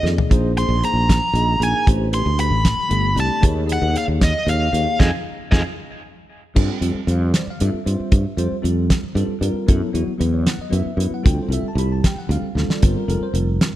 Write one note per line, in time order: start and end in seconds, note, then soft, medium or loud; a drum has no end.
0.03 0.16 F2 medium
0.03 0.28 A#3 medium
0.03 0.29 D#4 medium
0.03 0.29 G#4 medium
0.03 0.31 D5 medium
0.03 snare medium
0.18 floor tom medium
0.30 0.67 A#1 medium
0.30 0.51 A#3 medium
0.30 0.51 D#4 medium
0.30 0.51 G#4 medium
0.30 0.52 C5 loud
0.30 kick loud
0.30 closed hi-hat medium
0.57 0.74 A#3 medium
0.57 0.75 D#4 medium
0.57 0.75 G#4 medium
0.57 0.75 C5 medium
0.57 0.84 C6 medium
0.57 closed hi-hat medium
0.69 0.81 A#1 medium
0.83 1.18 A#3 medium
0.83 1.18 D#4 medium
0.83 1.18 G#4 medium
0.83 1.18 C5 medium
0.83 1.64 A#5 medium
0.83 closed hi-hat medium
0.94 1.19 A#1 medium
1.09 kick medium
1.09 snare loud
1.09 closed hi-hat medium
1.34 1.58 A#1 loud
1.34 1.51 A#3 medium
1.34 1.52 D#4 medium
1.34 1.52 G#4 medium
1.34 1.52 D#5 medium
1.34 closed hi-hat medium
1.60 1.73 A#1 medium
1.60 1.86 A#3 medium
1.60 1.86 D#4 medium
1.60 1.87 G#4 medium
1.60 1.87 A#4 medium
1.60 1.86 G#5 medium
1.60 closed hi-hat medium
1.86 2.24 A1 medium
1.86 2.07 A3 medium
1.86 2.07 D4 medium
1.86 2.08 G4 medium
1.86 2.08 C5 medium
1.86 kick loud
1.86 closed hi-hat medium
2.12 2.30 A3 medium
2.12 2.30 D4 medium
2.12 2.30 G4 medium
2.12 2.30 B4 medium
2.12 2.40 C6 medium
2.12 closed hi-hat medium
2.26 2.50 D2 medium
2.38 2.73 A3 medium
2.38 2.73 D4 medium
2.38 2.73 G4 medium
2.38 2.74 B4 medium
2.38 3.20 B5 medium
2.38 closed hi-hat medium
2.51 2.76 A1 medium
2.65 kick medium
2.65 snare loud
2.65 closed hi-hat medium
2.78 muted fretless electric bass stroke soft
2.88 3.15 G1 loud
2.88 3.07 A3 medium
2.88 3.08 D4 medium
2.88 3.08 G4 medium
2.88 3.08 A4 medium
2.88 closed hi-hat medium
3.16 3.29 C2 medium
3.16 3.42 A3 medium
3.16 3.42 D4 medium
3.16 3.43 G4 medium
3.16 3.43 D5 medium
3.16 closed hi-hat medium
3.20 3.43 A5 medium
3.40 3.79 D#2 loud
3.40 3.62 A#3 medium
3.40 3.63 D#4 medium
3.40 3.63 G#4 medium
3.40 3.63 C#5 medium
3.40 kick loud
3.40 closed hi-hat medium
3.66 3.85 A#3 medium
3.66 3.85 D#4 medium
3.66 3.85 G#4 medium
3.66 3.86 D#5 medium
3.66 closed hi-hat medium
3.72 3.97 F#5 medium
3.82 3.94 D#2 medium
3.93 4.29 A#3 medium
3.93 4.29 D#4 medium
3.93 4.29 G#4 medium
3.93 4.29 C#5 medium
3.93 closed hi-hat medium
3.98 4.04 F5 medium
4.08 4.32 D#2 medium
4.21 4.49 D#5 medium
4.21 kick medium
4.21 snare loud
4.21 closed hi-hat medium
4.46 4.71 D#2 loud
4.46 4.64 A#3 medium
4.46 4.64 D#4 medium
4.46 4.64 G#4 medium
4.46 4.65 C#5 medium
4.46 4.99 F5 medium
4.46 closed hi-hat medium
4.72 4.85 D#2 medium
4.72 4.99 A#3 medium
4.72 4.98 D#4 medium
4.72 4.98 G#4 medium
4.72 5.00 C#5 medium
4.72 closed hi-hat medium
4.99 5.09 F2 medium
4.99 5.08 D#4 loud
4.99 5.07 F4 loud
4.99 5.08 G#4 loud
4.99 5.08 D#5 medium
4.99 5.08 F5 medium
4.99 5.08 G#5 medium
4.99 kick medium
4.99 snare loud
5.51 5.61 F2 medium
5.51 5.60 D#4 loud
5.51 5.60 F4 medium
5.51 5.60 G#4 medium
5.51 5.60 D#5 medium
5.51 5.60 F5 medium
5.51 5.60 G#5 medium
5.51 kick medium
5.51 snare medium
6.55 6.68 G2 medium
6.55 6.76 G3 medium
6.55 6.76 C4 medium
6.55 6.76 F4 medium
6.55 6.77 A4 loud
6.55 kick medium
6.55 crash medium
6.81 6.94 F2 medium
6.81 6.99 G3 medium
6.81 6.99 C4 medium
6.81 6.99 F4 medium
6.81 6.99 A4 medium
6.81 closed hi-hat medium
6.95 muted fretless electric bass stroke soft
7.07 7.32 F2 medium
7.07 7.42 G3 medium
7.07 7.42 C4 medium
7.07 7.43 F4 medium
7.07 7.43 C5 medium
7.07 closed hi-hat medium
7.11 7.22 F5 medium
7.24 7.35 A4 medium
7.34 7.48 D5 medium
7.34 snare loud
7.34 closed hi-hat medium
7.47 7.61 F5 loud
7.47 muted fretless electric bass stroke soft
7.60 7.73 G2 loud
7.60 7.77 G3 medium
7.60 7.78 C4 medium
7.60 7.78 F4 medium
7.60 7.78 A4 medium
7.60 8.62 E5 medium
7.60 closed hi-hat medium
7.74 muted fretless electric bass stroke soft
7.85 7.98 G2 medium
7.85 8.21 G3 medium
7.85 8.20 C4 medium
7.85 8.21 F4 medium
7.85 8.21 C5 medium
7.85 closed hi-hat medium
8.00 muted fretless electric bass stroke soft
8.12 8.24 G2 medium
8.12 kick loud
8.12 closed hi-hat medium
8.37 8.50 F2 medium
8.37 8.55 G3 medium
8.37 8.55 C4 medium
8.37 8.56 F4 medium
8.37 8.56 C5 medium
8.37 closed hi-hat medium
8.52 muted fretless electric bass stroke soft
8.62 8.89 F2 medium
8.62 8.98 G3 medium
8.62 8.98 C4 medium
8.62 8.98 F4 medium
8.62 8.99 A4 medium
8.62 closed hi-hat medium
8.90 kick medium
8.90 snare loud
8.90 closed hi-hat medium
9.03 muted fretless electric bass stroke soft
9.15 9.27 G2 loud
9.15 9.33 G3 medium
9.15 9.33 C4 medium
9.15 9.34 F4 medium
9.15 9.34 A4 medium
9.15 closed hi-hat medium
9.28 muted fretless electric bass stroke soft
9.41 9.53 G2 medium
9.41 9.68 G3 medium
9.41 9.68 C4 medium
9.41 9.69 F4 medium
9.41 9.69 A#4 medium
9.41 closed hi-hat medium
9.54 muted fretless electric bass stroke soft
9.67 9.81 F#2 medium
9.67 9.89 F#3 medium
9.67 9.89 B3 medium
9.67 9.89 E4 medium
9.67 9.90 A4 medium
9.67 kick loud
9.67 closed hi-hat medium
9.93 10.07 E2 medium
9.93 10.11 F#3 medium
9.93 10.11 B3 medium
9.93 10.12 E4 medium
9.93 10.12 F#4 medium
9.93 closed hi-hat medium
10.08 muted fretless electric bass stroke soft
10.18 10.45 E2 medium
10.18 10.54 F#3 medium
10.18 10.54 B3 medium
10.18 10.55 E4 medium
10.18 10.55 B4 medium
10.18 closed hi-hat medium
10.34 10.47 C#5 medium
10.47 10.60 F#5 loud
10.47 snare loud
10.47 closed hi-hat medium
10.59 10.73 D#5 medium
10.59 muted fretless electric bass stroke soft
10.70 10.85 F#2 medium
10.70 10.89 F#3 medium
10.70 10.89 B3 medium
10.70 10.89 E4 medium
10.70 10.90 B4 medium
10.70 closed hi-hat medium
10.75 11.10 E5 medium
10.86 muted fretless electric bass stroke soft
10.97 11.10 F#2 medium
10.97 11.24 F#3 medium
10.97 11.24 B3 medium
10.97 11.25 E4 medium
10.97 11.25 B4 medium
10.97 closed hi-hat medium
11.11 11.26 F#5 medium
11.11 muted fretless electric bass stroke soft
11.23 11.38 D2 loud
11.23 11.45 G3 medium
11.23 11.45 C4 medium
11.23 11.45 F4 medium
11.23 11.46 A4 medium
11.23 11.38 G5 medium
11.23 kick loud
11.23 closed hi-hat medium
11.43 11.53 C5 medium
11.48 11.62 C2 medium
11.48 11.67 G3 medium
11.48 11.68 C4 medium
11.48 11.68 F4 medium
11.48 11.68 A4 medium
11.48 closed hi-hat medium
11.53 11.65 E5 medium
11.63 muted fretless electric bass stroke soft
11.68 11.79 A5 medium
11.75 12.01 C2 medium
11.75 12.12 G3 medium
11.75 12.12 C4 medium
11.75 12.13 F4 medium
11.75 12.13 G4 medium
11.75 11.91 B5 loud
11.75 closed hi-hat medium
11.92 12.04 A5 medium
12.04 12.18 G5 medium
12.04 kick medium
12.04 snare loud
12.04 closed hi-hat medium
12.16 12.30 F#5 medium
12.16 muted fretless electric bass stroke soft
12.29 12.41 D2 medium
12.29 12.47 G3 medium
12.29 12.47 C4 medium
12.29 12.48 F4 medium
12.29 12.48 A4 medium
12.29 12.67 F5 medium
12.29 closed hi-hat medium
12.42 muted fretless electric bass stroke soft
12.55 12.68 D2 medium
12.55 12.80 G3 medium
12.55 12.81 C4 medium
12.55 12.81 F4 medium
12.55 12.83 A4 medium
12.55 snare medium
12.69 12.82 D5 medium
12.69 muted fretless electric bass stroke soft
12.69 snare medium
12.81 12.95 G1 loud
12.81 13.02 G3 medium
12.81 13.03 C4 medium
12.81 13.03 F4 medium
12.81 12.96 A#4 medium
12.81 12.96 C5 medium
12.81 kick loud
12.81 closed hi-hat medium
12.97 13.08 A#4 medium
13.08 13.20 F1 medium
13.08 13.25 G3 medium
13.08 13.25 C4 medium
13.08 13.26 F4 medium
13.08 13.21 A4 medium
13.08 13.26 A#4 medium
13.08 closed hi-hat medium
13.23 13.35 C5 medium
13.33 13.58 F1 medium
13.33 13.68 G3 medium
13.33 13.69 C4 medium
13.33 13.69 F4 medium
13.33 13.69 A#4 medium
13.33 closed hi-hat medium
13.61 snare loud
13.61 closed hi-hat medium